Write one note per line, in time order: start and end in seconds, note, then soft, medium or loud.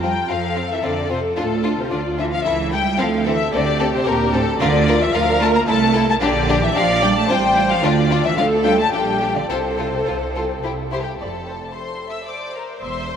0.00 0.24 F2 medium
0.00 0.11 G3 medium
0.00 0.11 C4 medium
0.00 0.30 F4 medium
0.00 0.11 F4 medium
0.00 0.30 G5 loud
0.29 0.78 F2 medium
0.29 0.70 F3 medium
0.29 0.37 C4 medium
0.29 0.38 F4 medium
0.29 1.39 A4 medium
0.29 0.71 F5 loud
0.56 0.64 C4 medium
0.56 0.64 F4 medium
0.71 0.84 E3 medium
0.71 0.85 E5 loud
0.83 1.32 F2 medium
0.83 1.11 D3 medium
0.83 0.91 C4 medium
0.83 0.91 F4 medium
0.83 1.12 D5 loud
1.09 1.20 C3 medium
1.09 1.18 C4 medium
1.09 1.17 F4 medium
1.09 1.19 C5 loud
1.36 1.86 D2 medium
1.36 1.78 A2 medium
1.36 1.45 D4 medium
1.36 1.44 F4 medium
1.36 2.46 F4 medium
1.36 1.78 A4 loud
1.63 1.72 D4 medium
1.63 1.71 F4 medium
1.79 1.92 C3 medium
1.79 1.93 C5 loud
1.91 2.39 D2 medium
1.91 2.01 D3 medium
1.91 1.99 D4 medium
1.91 1.99 F4 medium
1.91 2.19 D5 medium
2.18 2.32 E3 medium
2.18 2.26 D4 medium
2.18 2.26 F4 medium
2.18 2.24 E5 loud
2.32 2.46 F3 medium
2.32 2.45 F5 loud
2.44 2.93 C#2 loud
2.44 2.73 E3 loud
2.44 2.53 E4 medium
2.44 2.99 E4 medium
2.44 2.53 A4 medium
2.44 2.71 E5 loud
2.71 3.00 G3 loud
2.71 2.80 E4 medium
2.71 2.80 A4 medium
2.71 2.98 G5 loud
2.99 3.46 D2 loud
2.99 3.26 F3 medium
2.99 3.07 C4 medium
2.99 3.07 A4 medium
2.99 3.53 A4 medium
2.99 3.26 F5 loud
3.26 3.35 E3 loud
3.26 3.34 C4 medium
3.26 3.34 A4 medium
3.26 3.53 E5 loud
3.52 4.00 D2 medium
3.52 3.92 D3 loud
3.52 3.61 C4 medium
3.52 4.60 G4 loud
3.52 3.61 A4 medium
3.52 3.93 D5 loud
3.80 3.88 C4 medium
3.80 3.88 A4 medium
3.92 4.06 C3 medium
3.92 4.07 C5 loud
4.06 4.54 D2 loud
4.06 4.33 A#2 loud
4.06 4.14 C4 medium
4.06 4.14 A4 medium
4.06 4.33 A#4 loud
4.33 4.41 A2 loud
4.33 4.42 C4 medium
4.33 4.60 A4 loud
4.33 4.42 A4 medium
4.60 5.08 D2 loud
4.60 5.00 D3 loud
4.60 5.13 F4 loud
4.60 4.68 F4 loud
4.60 4.68 A#4 loud
4.60 5.00 D5 loud
4.87 4.96 F4 loud
4.87 4.95 A#4 loud
5.00 5.14 E3 loud
5.00 5.14 E5 loud
5.14 5.61 D2 loud
5.14 5.40 F3 loud
5.14 5.22 F4 medium
5.14 5.68 A#4 loud
5.14 5.23 A#4 medium
5.14 5.41 F5 loud
5.40 5.54 A3 loud
5.40 5.49 F4 medium
5.40 5.49 A#4 medium
5.40 5.47 A5 loud
5.54 5.68 A#3 loud
5.54 5.60 A#5 loud
5.67 6.15 C2 loud
5.67 6.07 A3 loud
5.67 5.76 E4 medium
5.67 6.20 A4 loud
5.67 5.76 A4 medium
5.67 6.07 A5 loud
5.94 6.02 E4 medium
5.94 6.02 A4 medium
6.08 6.13 A3 loud
6.08 6.14 A5 loud
6.20 6.69 A#1 loud
6.20 6.61 D3 loud
6.20 6.28 D4 loud
6.20 6.29 G4 loud
6.20 6.74 G4 loud
6.20 6.61 D5 loud
6.49 6.57 D4 loud
6.49 6.57 G4 loud
6.62 6.75 E3 loud
6.62 6.76 E5 loud
6.75 7.23 A#1 loud
6.75 7.02 F3 loud
6.75 6.84 D4 medium
6.75 6.84 G4 medium
6.75 7.28 D5 loud
6.75 7.03 F5 loud
7.02 7.15 G3 loud
7.02 7.11 D4 medium
7.02 7.10 G4 medium
7.02 7.08 G5 loud
7.16 7.29 A3 loud
7.16 7.29 A5 loud
7.29 7.77 A1 loud
7.29 7.70 G3 loud
7.29 7.37 C4 medium
7.29 7.37 F4 medium
7.29 7.82 C5 loud
7.29 7.70 G5 loud
7.56 7.64 C4 medium
7.56 7.64 F4 medium
7.70 7.83 F3 loud
7.70 7.84 F5 loud
7.82 8.31 D2 loud
7.82 8.24 D3 loud
7.82 7.92 D4 loud
7.82 8.37 F4 loud
7.82 7.91 F4 loud
7.82 8.25 D5 loud
8.11 8.19 D4 medium
8.11 8.19 F4 medium
8.24 8.29 E3 loud
8.24 8.38 E5 loud
8.37 8.86 D2 loud
8.37 8.45 F3 loud
8.37 8.46 D4 medium
8.37 8.46 F4 medium
8.37 8.91 A4 loud
8.37 8.45 F5 loud
8.64 8.78 G3 loud
8.64 8.72 D4 medium
8.64 8.73 F4 medium
8.64 8.78 G5 loud
8.78 8.93 A3 loud
8.78 8.93 A5 loud
8.92 9.43 A#1 loud
8.92 9.34 G3 loud
8.92 9.01 D4 medium
8.92 9.48 G4 medium
8.92 9.01 G4 medium
8.92 9.35 G5 loud
9.21 9.29 D4 medium
9.21 9.29 G4 medium
9.35 9.41 D3 medium
9.35 9.50 D5 loud
9.49 10.00 C2 loud
9.49 10.62 C3 loud
9.49 9.58 F4 medium
9.49 10.89 A4 medium
9.49 9.58 A4 medium
9.49 10.62 C5 loud
9.78 9.86 F4 medium
9.78 9.86 A4 medium
10.07 10.58 C2 medium
10.07 10.15 F4 medium
10.07 10.15 A4 medium
10.35 10.44 F4 medium
10.35 10.43 A4 medium
10.64 11.14 C2 medium
10.64 10.72 E4 medium
10.64 10.72 G4 medium
10.92 11.00 E4 medium
10.92 11.00 G4 medium
10.92 11.01 C5 medium
10.92 10.97 C6 medium
11.01 11.20 G4 medium
11.01 11.11 G5 medium
11.19 11.66 F1 medium
11.19 11.66 F2 medium
11.19 11.74 A4 medium
11.19 11.28 D5 medium
11.19 11.74 A5 medium
11.47 11.55 C5 soft
11.73 12.28 A4 medium
11.73 12.10 C5 medium
11.73 12.10 C6 medium
12.09 12.28 E5 medium
12.09 12.29 E6 medium
12.28 12.83 C5 medium
12.28 12.55 D5 medium
12.28 12.56 D6 medium
12.54 12.83 A#4 medium
12.54 12.62 A#5 medium
12.82 13.17 E1 medium
12.82 13.17 E2 medium
12.82 13.17 C5 medium
12.82 13.10 E5 medium
12.82 13.17 C6 medium
13.09 13.17 C5 medium